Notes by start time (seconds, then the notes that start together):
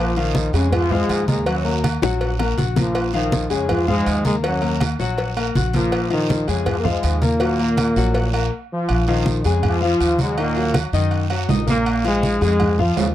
Already playing: A#1 F3 A#3 F4 A#5
0.17 D#3 F3 D#4 F4 F5, high conga, low agogo
0.35 cowbell, high conga, short guiro
0.53 F2 C#3 G#3 C#4 G#4 G#5, high conga, low agogo, short guiro
0.72 F3 F4, cowbell, high conga, low conga, low agogo, long guiro
0.90 G#2 F3 G#3 F4 F5, high conga, low conga
1.09 D#2, cowbell, high conga, low agogo, short guiro
1.28 G#2 G#3 A#3 A#4 A#5, cowbell, high conga, short guiro
1.46 F#2 F#3 F#4 F#5, cowbell, high conga, low agogo, long guiro
1.64 A#3 A#4 A#5, high conga, low agogo
1.84 cowbell, high conga, low agogo, short guiro
2.02 A#1 F#3 F#4 F#5, high bongo, high conga, short guiro
2.21 cowbell, high conga, low agogo, long guiro
2.39 A#3 A#4 A#5, low bongo, high conga, low agogo
2.57 A#1 F#4 F#5 F#6, cowbell, high conga, short guiro
2.76 F3 A#3 F4 A#4 A#5, cowbell, low bongo, high conga, low agogo, short guiro
2.95 cowbell, high conga, low agogo, long guiro
3.13 D#3 F3 D#4 F4 F5, high conga, low agogo
3.32 cowbell, high conga, short guiro
3.50 F2 C#3 G#3 C#4 G#4 G#5, high conga, low agogo, short guiro
3.69 F3 F4, cowbell, high conga, low conga, low agogo, long guiro
3.87 G#2 F3 G#3 F4 F5, high conga, low conga
4.06 D#2, cowbell, high conga, low agogo, short guiro
4.25 G#2 G#3 A#3 A#4 A#5, cowbell, high conga, short guiro
4.43 F#2 F#3 F#4 F#5, cowbell, low agogo, long guiro
4.62 A#3 A#4 A#5, high conga, low agogo
4.80 cowbell, high conga, low agogo, short guiro
4.99 A#1 F#3 F#4 F#5, high conga, short guiro
5.18 cowbell, high conga, low agogo, long guiro
5.36 A#3 A#4 A#5, high conga, low agogo
5.55 A#1 F#4 F#5 F#6, cowbell, high conga, short guiro
5.73 F3 A#3 F4 A#4 A#5, cowbell, high conga, low agogo, short guiro
5.92 cowbell, high conga, low agogo, long guiro
6.10 D#3 F3 D#4 F4 F5, high conga, low agogo
6.29 cowbell, high conga, short guiro
6.48 F2 C#3 G#3 C#4 G#4 G#5, high conga, low agogo, short guiro
6.66 F3 F4, cowbell, high conga, low conga, low agogo, long guiro
6.79 A#3
6.83 G#2 F3 G#3 F4 F5, high conga, low conga
7.03 D#2, cowbell, high conga, low agogo, short guiro
7.22 A#2 A#3 A#4 A#5, cowbell, high conga, short guiro
7.40 F#3 F#4 F#5, cowbell, high conga, low agogo, long guiro
7.59 A#3 A#4 A#5, high conga, low agogo
7.77 cowbell, high conga, low agogo, short guiro
7.96 A#1 F#3 F#4 F#5, high conga, short guiro
8.14 cowbell, high conga, low agogo, long guiro
8.33 A#3 A#4 A#5, high conga, low agogo
8.71 F3 F4
8.89 A#1, high conga, low agogo, long guiro
9.08 D#3 F3 D#4 F4 F5, high conga, low agogo
9.26 high conga, short guiro
9.44 F2 C#3 G#3 C#4 G#4 G#5, high conga, low agogo, short guiro
9.63 F3 F4, high conga, low conga, low agogo, long guiro
9.81 F3 F4 F5, high conga
10.00 D#2, high conga, low agogo, short guiro
10.19 G#2 F#3 G#3 F#4 F#5, high conga, short guiro
10.37 A#2 D#3 A#3 D#4 D#5, high conga, low agogo, long guiro
10.56 F#3 F#4 F#5, high conga, low agogo
10.74 high conga, low agogo, short guiro
10.93 F#2 D#3 D#4 D#5, high conga, short guiro
11.11 high conga, low agogo, long guiro
11.30 F#3 F#4 F#5, high conga, low agogo
11.49 A#1 D#4 D#5 D#6, high conga, low timbale, short guiro
11.67 A#2 A#3 A#4 A#5, high conga, low agogo, short guiro
11.86 low agogo, long guiro
12.04 G#2 F3 G#3 F4 F5, high conga, low agogo
12.23 high conga, short guiro
12.41 F2 G#2 G#3 G#4 G#5, high conga, low agogo, short guiro
12.60 high conga, low conga, low agogo, long guiro
12.79 F3 F4 F5, high conga, low conga
12.97 D#2 C#3 C#4, high conga, low timbale, low agogo, short guiro